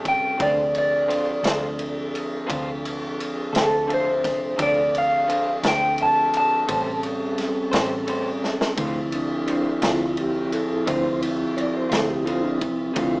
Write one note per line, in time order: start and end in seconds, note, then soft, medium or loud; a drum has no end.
0.00 0.36 A1 medium
0.00 0.37 G3 medium
0.00 0.37 C4 medium
0.00 0.37 C#4 medium
0.00 0.37 A4 medium
0.05 0.41 G5 medium
0.05 kick medium
0.05 ride medium
0.38 1.41 D2 loud
0.38 0.60 D3 medium
0.38 4.55 F3 medium
0.38 0.61 C4 medium
0.38 4.55 C4 medium
0.38 4.54 D4 medium
0.38 0.61 F4 medium
0.38 4.55 A4 medium
0.38 0.61 A4 medium
0.38 0.75 D5 loud
0.38 kick loud
0.38 ride medium
0.75 2.13 D5 loud
0.75 ride medium
1.08 1.30 D3 medium
1.08 1.30 C4 medium
1.08 1.31 F4 medium
1.08 1.31 A4 medium
1.08 ride medium
1.43 2.45 D2 medium
1.43 1.67 C4 soft
1.43 1.66 F4 soft
1.43 1.65 A4 soft
1.43 snare loud
1.43 ride medium
1.79 ride medium
2.15 ride medium
2.47 3.50 D2 medium
2.47 2.69 D3 medium
2.47 2.69 C4 medium
2.47 2.70 F4 loud
2.47 2.70 A4 medium
2.47 kick medium
2.47 ride medium
2.85 ride medium
3.20 ride medium
3.53 4.54 D2 loud
3.53 3.76 C4 soft
3.53 3.75 F4 soft
3.53 3.75 A4 medium
3.53 snare loud
3.53 ride medium
3.57 3.90 A4 medium
3.87 4.09 D3 medium
3.87 4.10 C4 medium
3.87 4.10 F4 medium
3.87 4.10 A4 medium
3.87 ride medium
3.94 4.59 C5 medium
4.24 kick medium
4.24 snare soft
4.24 ride medium
4.56 5.60 D2 loud
4.56 4.79 D3 medium
4.56 6.66 F3 medium
4.56 4.79 C4 medium
4.56 6.65 C4 medium
4.56 6.66 D4 medium
4.56 4.80 F4 medium
4.56 4.80 A4 medium
4.56 6.65 A4 medium
4.56 kick loud
4.56 ride medium
4.62 4.95 D5 medium
4.95 5.64 F5 medium
4.95 ride medium
5.27 5.49 D3 medium
5.27 5.50 C4 medium
5.27 5.50 F4 medium
5.27 5.50 A4 medium
5.27 ride medium
5.63 6.64 D2 loud
5.63 5.86 C4 soft
5.63 5.86 F4 soft
5.63 5.85 A4 medium
5.63 snare loud
5.63 ride medium
5.68 6.00 G5 loud
5.98 ride medium
6.03 6.35 A5 medium
6.34 7.03 A5 loud
6.34 ride medium
6.66 7.69 A1 medium
6.66 8.75 G3 medium
6.66 6.89 A3 medium
6.66 8.75 C4 medium
6.66 8.75 C#4 medium
6.66 6.90 C#4 medium
6.66 6.90 G4 medium
6.66 8.75 A4 medium
6.66 6.90 C5 medium
6.66 kick medium
6.66 ride medium
7.03 ride medium
7.38 snare soft
7.38 ride medium
7.71 8.74 A1 medium
7.71 7.95 C#4 medium
7.71 7.94 G4 medium
7.71 7.93 C5 medium
7.71 snare loud
7.71 ride medium
8.07 8.29 A3 medium
8.07 8.29 C#4 medium
8.07 8.30 G4 medium
8.07 8.30 C5 medium
8.07 ride medium
8.44 snare medium
8.61 snare medium
8.77 9.78 D2 loud
8.77 8.98 D3 medium
8.77 12.92 F3 medium
8.77 8.98 A3 medium
8.77 8.99 C4 medium
8.77 12.61 C4 soft
8.77 12.92 E4 medium
8.77 8.99 F4 medium
8.77 kick loud
8.77 ride medium
9.12 9.81 D4 medium
9.12 ride medium
9.46 9.68 D3 medium
9.46 9.69 A3 medium
9.46 9.69 C4 medium
9.46 9.69 F4 medium
9.46 ride medium
9.82 10.83 D2 loud
9.82 10.05 A3 soft
9.82 10.04 C4 soft
9.82 10.03 F4 soft
9.82 10.17 F4 medium
9.82 snare loud
9.82 ride medium
10.17 10.53 G4 medium
10.17 ride medium
10.52 10.87 A4 medium
10.52 ride medium
10.86 11.88 D2 medium
10.86 11.07 D3 medium
10.86 11.08 A3 medium
10.86 11.08 C4 medium
10.86 11.08 F4 medium
10.86 11.21 C5 loud
10.86 kick medium
10.86 ride medium
11.22 ride medium
11.57 11.60 C#5 medium
11.57 ride medium
11.61 11.75 D5 loud
11.77 11.92 C5 medium
11.90 12.92 D2 medium
11.90 12.13 A3 soft
11.90 12.13 C4 soft
11.90 12.12 F4 medium
11.90 12.09 A4 medium
11.90 snare loud
11.90 ride medium
12.09 12.25 G4 medium
12.25 12.47 D3 medium
12.25 12.47 A3 medium
12.25 12.47 C4 medium
12.25 12.42 F4 medium
12.25 12.48 F4 medium
12.25 ride medium
12.43 12.60 D4 medium
12.61 12.96 C4 medium
12.61 kick medium
12.61 ride medium
12.94 13.20 D2 loud
12.94 13.16 D3 medium
12.94 13.20 F3 medium
12.94 13.16 A3 medium
12.94 13.17 C4 medium
12.94 13.20 C4 soft
12.94 13.20 E4 medium
12.94 13.17 F4 medium
12.94 kick loud
12.94 ride medium
12.99 13.20 F4 medium